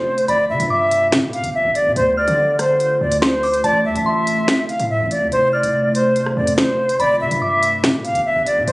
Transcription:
0.00 0.25 C3 medium
0.00 0.25 A3 medium
0.00 0.27 F4 medium
0.00 0.26 C5 medium
0.18 closed hi-hat medium
0.28 0.51 G1 loud
0.28 3.61 D3 medium
0.28 1.95 B3 medium
0.28 1.94 G4 medium
0.28 0.45 D5 loud
0.28 0.68 B5 loud
0.28 closed hi-hat medium
0.49 0.59 D3 loud
0.49 0.66 E5 medium
0.60 1.14 G2 loud
0.60 closed hi-hat medium
0.70 1.08 E5 medium
0.70 1.10 D6 medium
0.91 closed hi-hat medium
1.12 1.30 D3 loud
1.12 finger snap medium
1.12 snare loud
1.12 closed hi-hat medium
1.28 1.43 G2 loud
1.33 1.50 F5 medium
1.33 closed hi-hat medium
1.44 1.64 G1 loud
1.44 closed hi-hat medium
1.55 1.71 E5 loud
1.65 1.87 G1 loud
1.75 1.92 D5 medium
1.75 closed hi-hat medium
1.86 1.96 B2 loud
1.96 2.26 D2 loud
1.96 5.29 A3 medium
1.96 3.62 F4 medium
1.96 2.13 C5 loud
1.96 closed hi-hat medium
2.17 2.57 D5 medium
2.17 2.37 F6 medium
2.28 2.98 D3 loud
2.28 closed hi-hat medium
2.59 2.99 C5 medium
2.59 cross-stick medium
2.59 closed hi-hat medium
2.80 closed hi-hat medium
3.01 3.62 D2 loud
3.01 3.18 D5 medium
3.12 closed hi-hat medium
3.22 3.62 C5 medium
3.22 3.42 C6 medium
3.22 finger snap loud
3.22 snare loud
3.43 3.63 D6 medium
3.43 open hi-hat medium
3.54 closed hi-hat medium
3.64 3.87 A1 loud
3.64 5.30 C3 medium
3.64 5.30 E4 loud
3.64 3.81 D5 loud
3.64 4.03 A5 loud
3.64 closed hi-hat medium
3.85 3.95 E2 loud
3.85 4.02 E5 medium
3.96 4.46 A1 loud
3.96 closed hi-hat medium
4.06 4.65 E5 medium
4.06 4.45 C6 loud
4.27 closed hi-hat medium
4.48 finger snap medium
4.48 snare loud
4.48 closed hi-hat medium
4.69 4.86 F5 medium
4.69 closed hi-hat medium
4.80 5.00 A2 loud
4.80 closed hi-hat medium
4.90 5.07 E5 loud
5.00 5.23 A1 loud
5.11 5.28 D5 medium
5.11 closed hi-hat medium
5.21 5.31 E2 loud
5.32 5.62 F1 loud
5.32 6.98 C3 medium
5.32 6.98 A3 medium
5.32 6.98 F4 loud
5.32 5.49 C5 loud
5.32 closed hi-hat medium
5.53 5.92 D5 medium
5.53 5.73 F6 medium
5.63 6.34 F1 loud
5.63 closed hi-hat medium
5.95 6.34 C5 medium
5.95 closed hi-hat medium
6.16 closed hi-hat medium
6.26 cross-stick medium
6.37 6.59 F2 loud
6.37 6.53 D5 medium
6.47 closed hi-hat medium
6.58 6.78 G1 loud
6.58 6.97 C5 medium
6.58 finger snap loud
6.58 snare loud
6.89 closed hi-hat medium
7.00 7.22 G1 loud
7.00 8.72 D3 medium
7.00 8.66 B3 medium
7.00 8.66 G4 loud
7.00 7.16 D5 loud
7.00 7.39 B5 loud
7.00 closed hi-hat medium
7.21 7.31 D3 loud
7.21 7.37 E5 medium
7.31 7.85 G2 loud
7.31 closed hi-hat medium
7.42 7.82 E5 medium
7.42 7.81 D6 medium
7.63 closed hi-hat medium
7.84 8.01 D3 loud
7.84 finger snap medium
7.84 snare loud
7.84 closed hi-hat medium
7.99 8.14 G2 loud
8.04 8.21 F5 medium
8.04 closed hi-hat medium
8.15 8.35 G1 loud
8.15 closed hi-hat medium
8.26 8.42 E5 medium
8.36 8.59 G1 loud
8.46 8.63 D5 medium
8.46 closed hi-hat medium
8.57 8.67 B2 loud
8.67 8.72 D2 loud
8.67 8.72 C5 loud
8.67 closed hi-hat medium

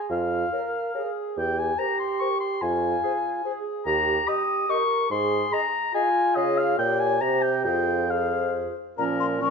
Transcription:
0.00 0.12 G#4 medium
0.10 0.45 F2 medium
0.10 0.52 F4 soft
0.10 1.14 F5 medium
0.53 0.94 A#4 medium
0.53 0.68 A#4 soft
0.53 0.60 C#5 soft
0.94 1.39 G#4 medium
0.94 1.10 A#4 soft
0.94 1.02 C#5 soft
1.37 1.72 E2 medium
1.37 1.78 G4 soft
1.37 1.60 G5 medium
1.59 1.80 G#5 medium
1.78 2.64 G4 medium
1.78 1.93 A#4 soft
1.78 1.86 C5 soft
1.78 1.99 A#5 medium
1.99 2.21 C6 medium
2.20 2.35 A#4 soft
2.20 2.28 C5 soft
2.20 2.39 C#6 medium
2.40 2.63 C6 medium
2.61 2.97 F2 medium
2.61 3.44 F4 medium
2.61 3.65 G#5 medium
3.03 3.18 G#4 soft
3.03 3.12 C5 soft
3.45 3.88 G#4 medium
3.45 3.60 G#4 soft
3.45 3.52 C5 soft
3.86 4.20 D#2 medium
3.86 4.27 G4 medium
3.86 4.29 A#5 medium
4.28 4.42 G4 soft
4.28 4.68 G4 medium
4.28 4.35 D#5 medium
4.28 4.71 D#6 medium
4.68 4.83 G4 medium
4.68 5.10 A#4 medium
4.68 4.77 D#5 medium
4.68 5.10 C#6 medium
5.10 5.45 G#2 medium
5.10 5.66 G#4 medium
5.10 5.54 C6 medium
5.52 5.67 G#4 soft
5.52 5.60 D#5 medium
5.52 5.93 A#5 medium
5.94 6.79 F4 medium
5.94 6.09 G#4 medium
5.94 6.02 D#5 soft
5.94 6.37 G#5 medium
6.35 6.75 C#3 medium
6.35 6.76 G#4 medium
6.35 6.75 C#5 medium
6.35 6.59 D#5 medium
6.58 6.78 F5 medium
6.78 7.23 A#2 medium
6.78 7.21 G4 medium
6.78 7.22 C#5 medium
6.78 7.01 G5 medium
7.00 7.22 G#5 medium
7.21 7.68 C3 medium
7.21 7.64 G4 medium
7.21 7.67 G4 medium
7.21 7.64 C5 medium
7.21 7.43 A#5 medium
7.42 7.63 G5 medium
7.64 8.77 F2 medium
7.64 8.74 F4 medium
7.64 8.10 G#4 soft
7.64 8.09 C5 soft
7.64 8.12 G5 medium
8.09 8.75 G#4 soft
8.09 8.75 C5 medium
8.09 8.55 F5 medium
8.98 9.50 A#2 medium
8.98 9.39 F3 medium
8.98 9.39 C#4 medium
8.98 9.38 A#4 soft
8.98 9.04 A#5 medium
9.20 9.26 C6 medium
9.41 9.50 F3 medium
9.41 9.50 C#4 medium
9.41 9.50 A#4 medium
9.41 9.50 C#6 medium

